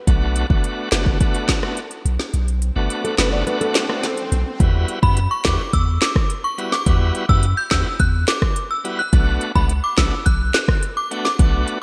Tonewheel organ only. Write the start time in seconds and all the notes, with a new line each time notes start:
0.07 A3 B3 D4 F#4
0.50 A3 B3 D4 F#4
0.92 A3 B3 D4 F#4
1.20 A3 B3 D4 F#4
1.62 A3 B3 D4 F#4
2.76 A3 B3 D4 F#4
3.18 A3 B3 D4 F#4
3.46 A3 B3 D4 F#4
3.89 A3 B3 D4 F#4
4.60 G3 B3 E4 F#4
5.02 G3 B3 E4 F#4
5.45 G3 B3 E4 F#4
6.58 G3 B3 E4 F#4
6.86 G3 B3 E4 F#4
7.29 G3 B3 E4 F#4
7.71 G3 B3 E4 F#4
8.84 G3 B3 E4 F#4
9.13 A3 B3 D4 F#4
9.55 A3 B3 D4 F#4
9.98 A3 B3 D4 F#4
11.11 A3 B3 D4 F#4
11.39 A3 B3 D4 F#4